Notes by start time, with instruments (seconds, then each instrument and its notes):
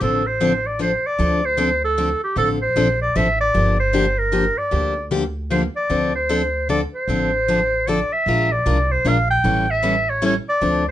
0.00 upright bass A1, steel-string acoustic guitar D3 F3 C4 D4 A4, clarinet A4
0.27 clarinet C5
0.40 steel-string acoustic guitar D3 F3 C4 D4 A4
0.66 clarinet D5
0.79 steel-string acoustic guitar D3 F3 C4 D4 A4, clarinet C5
1.06 clarinet D5
1.19 upright bass D2, steel-string acoustic guitar D3 F3 C4 D4 A4
1.45 clarinet C5
1.57 steel-string acoustic guitar D3 F3 C4 D4 A4
1.84 clarinet A4
1.98 steel-string acoustic guitar D3 F3 C4 D4 A4
2.23 clarinet G4
2.36 upright bass A1, steel-string acoustic guitar D3 F3 C4 D4 A4, clarinet A4
2.62 clarinet C5
2.76 upright bass A#1, steel-string acoustic guitar D3 F3 C4 D4 A4
3.02 clarinet D5
3.15 upright bass A1, steel-string acoustic guitar D3 F3 C4 D4 A4, clarinet E5
3.41 clarinet D5
3.54 upright bass G1, steel-string acoustic guitar D3 F3 A#3 D4 G4
3.79 clarinet C5
3.93 steel-string acoustic guitar D3 F3 A#3 D4 G4
4.18 clarinet A#4
4.32 steel-string acoustic guitar D3 F3 A#3 D4 G4
4.58 clarinet D5
4.71 upright bass D2, steel-string acoustic guitar D3 F3 A#3 D4 G4
5.11 steel-string acoustic guitar D3 F3 A#3 D4 G4
5.50 steel-string acoustic guitar D3 F3 A#3 D4 G4, clarinet C5
5.76 clarinet D5
5.90 upright bass D2, steel-string acoustic guitar D3 F3 C4 D4 A4
6.15 clarinet C5
6.29 steel-string acoustic guitar D3 F3 C4 D4 A4
6.69 steel-string acoustic guitar D3 F3 C4 D4 A4, clarinet D5
6.94 clarinet C5
7.08 upright bass A1, steel-string acoustic guitar D3 F3 C4 D4 A4
7.48 steel-string acoustic guitar D3 F3 C4 D4 A4
7.87 steel-string acoustic guitar D3 F3 C4 D4 A4, clarinet D5
8.13 clarinet E5
8.26 upright bass A#1, steel-string acoustic guitar F3 G#3 D4 F4 A#4
8.52 clarinet D5
8.66 upright bass C2, steel-string acoustic guitar F3 G#3 D4 F4 A#4
8.91 clarinet C5
9.05 upright bass A#1, steel-string acoustic guitar F3 G#3 D4 F4 A#4, clarinet F5
9.30 clarinet G5
9.44 upright bass A1, steel-string acoustic guitar E3 G3 C#4 E4 A4
9.70 clarinet E5
9.83 steel-string acoustic guitar E3 G3 C#4 E4 A4
10.10 clarinet C#5
10.22 steel-string acoustic guitar E3 G3 C#4 E4 A4
10.26 clarinet C#5
10.49 clarinet D5
10.61 upright bass D2, steel-string acoustic guitar D3 F3 C4 D4 A4